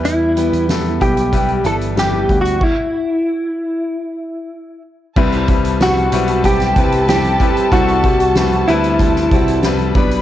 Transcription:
<<
  \new Staff \with { instrumentName = "Violin section" } { \time 4/4 \key c \lydian \tempo 4 = 94 r1 | r1 | <a' a''>1~ | <a' a''>2.~ <a' a''>8 <b' b''>8 | }
  \new Staff \with { instrumentName = "Steel-string acoustic guitar" } { \time 4/4 \key c \lydian <e b e' g' b'>8 <e b e' g' b'>8. <e' g' b'>8. <b e' g' b'>8 <e b e' g' b'>8. <e' g' b'>8. | r1 | <c' e' g' b'>16 <e' g' b'>4~ <e' g' b'>16 <c' e' g' b'>4 <c' e' g' b'>8 <c' e' g' b'>8 <c' e' g' b'>8 | <c' e' g' b'>16 <e' g' b'>4~ <e' g' b'>16 <c' e' g' b'>4 <c' e' g' b'>8 <c' e' g' b'>8 <b d' g' b'>8 | }
  \new Staff \with { instrumentName = "Clean electric guitar" } { \time 4/4 \key c \lydian e'4 r8 g'4 a'8 \tuplet 3/2 { g'4 fis'8 } | e'2.~ e'8 r8 | r4 fis'4 g'4 g'4 | fis'4. e'4. r4 | }
  \new Staff \with { instrumentName = "Grand piano" } { \time 4/4 \key c \lydian <g b e' b'>8 <g b e' b'>8 <g b e' a'>8 <g b e' b'>8 <g b e' b'>8 <g b e' a'>8 <g b e' b'>8 <g b e' fis'>8 | r1 | <g c' e' b'>8 <g c' e' b'>8 <g c' e' b'>8 <g c' e' b'>8 <g c' e' b'>8 <g c' e' b'>8 <g c' e' g'>8 <g c' e' b'>8 | <g c' e' a'>8 <g c' e' g'>8 <g c' e' b'>8 <g c' e' b'>8 <g c' e' b'>8 <g c' e' fis'>8 <g c' e' b'>8 <g b d' b'>8 | }
  \new Staff \with { instrumentName = "Grand piano" } { \clef bass \time 4/4 \key c \lydian e4 r2. | r1 | c4. r2 r8 | c4. r2 b,8 | }
  \new Staff \with { instrumentName = "Picked electric bass" } { \clef bass \time 4/4 \key c \lydian e,8. e,8. b,,4 g,,4 d,8 | r1 | c,4. b,,4 c,4 r8 | c,4. d,4 c,4 b,,8 | }
  \new DrumStaff \with { instrumentName = "Drums" } \drummode { \time 4/4 hh8 hh16 hh16 <hh sn>16 hh16 <hh bd>16 hh16 <hh bd>16 hh16 hh16 hh16 <hh sn>8 <hh bd>16 hh16 | <cymc bd>4 r4 r4 r4 | <cymc bd>16 hh16 <hh bd>16 hh16 <hh sn>16 hh16 hh16 hh16 <hh bd>16 <hh sn>16 <hh bd>16 hh16 <hh sn>16 hh16 <hh bd>16 hh16 | <hh bd>16 hh16 <hh bd>16 hh16 <hh sn>16 hh16 hh16 hh16 <hh bd>16 sn16 <hh bd>16 hh16 <hh sn>16 hh16 <hh bd>16 hh16 | }
>>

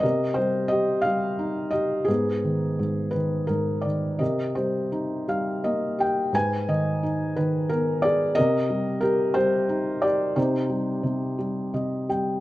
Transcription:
<<
  \new Staff \with { instrumentName = "Felt piano" } { \time 6/8 \key c \minor \tempo 4. = 58 << { ees''8 c''8 ees''8 f''4 ees''8 | aes'4. ces''8 bes'8 d''8 | ees''8 c''8 r8 f''8 ees''8 g''8 | aes''8 ees''8 r8 ces''8 bes'8 d''8 |
ees''4 bes'8 c''4 d''8 | c''2~ c''8 r8 | } \\ { bes'4. r4. | ces'4. r4. | bes'4. r4. | ces''4. r4. |
bes'4. r4. | ees'2~ ees'8 r8 | } >> }
  \new Staff \with { instrumentName = "Felt piano" } { \clef bass \time 6/8 \key c \minor c8 g8 g'8 g8 ees'8 g'8 | aes,8 ees8 aes,8 ees8 aes,8 ees8 | c8 g8 ees'8 g8 bes8 g'8 | aes,8 ees8 ees'8 ees8 ces'8 aes'8 |
c8 g8 g'8 g8 ees'8 g'8 | c8 g8 c8 g8 <c ees''>8 <g g''>8 | }
>>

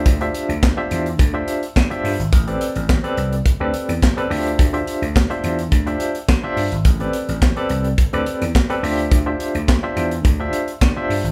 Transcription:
<<
  \new Staff \with { instrumentName = "Tine electric piano" } { \time 4/4 \key d \dorian \tempo 4 = 106 r16 <d' f' g' c'' e''>8 r8 <d' f' g' c'' e''>8 r8 <d' f' g' c'' e''>8 r8 <d' f' g' c'' e''>8 r16 | r16 <c' g' a' b' d''>8 r8 <c' g' a' b' d''>8 r8 <c' g' a' b' d''>8 r8 <c' g' a' b' d''>16 <d' f' g' c'' e''>8 | r16 <d' f' g' c'' e''>8 r8 <d' f' g' c'' e''>8 r8 <d' f' g' c'' e''>8 r8 <d' f' g' c'' e''>8 r16 | r16 <c' g' a' b' d''>8 r8 <c' g' a' b' d''>8 r8 <c' g' a' b' d''>8 r8 <c' g' a' b' d''>16 <d' f' g' c'' e''>8 |
r16 <d' f' g' c'' e''>8 r8 <d' f' g' c'' e''>8 r8 <d' f' g' c'' e''>8 r8 <d' f' g' c'' e''>8 r16 | }
  \new Staff \with { instrumentName = "Slap bass" } { \clef bass \time 4/4 \key d \dorian d,8 r16 d,8 r16 e,8 d,8 r8 d16 r16 g,16 gis,,16 | a,,8 r16 a,,8 r16 c,8 r16 d,16 r16 e,16 r8 d,8 | d,8 r16 d,8 r16 e,8 d,8 r8 d16 r16 g,16 gis,,16 | a,,8 r16 a,,8 r16 c,8 r16 d,16 r16 e,16 r8 d,8 |
d,8 r16 d,8 r16 e,8 d,8 r8 d16 r16 g,16 gis,,16 | }
  \new DrumStaff \with { instrumentName = "Drums" } \drummode { \time 4/4 <hh bd>16 hh16 hh16 hh16 <hc bd sn>8 hh16 hh16 <hh bd>8 hh16 hh16 <hc bd sn>16 hh16 hho16 hh16 | <hh bd>16 hh16 hh16 hh16 <hc bd sn>16 hh16 hh16 hh16 <hh bd>8 hh16 hh16 <hc bd sn>16 hh16 hho16 hh16 | <hh bd>16 hh16 hh16 hh16 <hc bd sn>16 hh16 hh16 hh16 <hh bd>16 hh16 hh16 hh16 <hc bd sn>8 hho16 hh16 | <hh bd>16 hh16 hh16 hh16 <hc bd sn>16 hh16 hh16 hh16 <hh bd>16 hh16 hh16 hh16 <hc bd sn>16 hh16 hho16 hh16 |
<hh bd>8 hh16 hh16 <hc bd sn>8 hh16 hh16 <hh bd>8 hh16 hh16 <hc bd sn>8 hho16 hh16 | }
>>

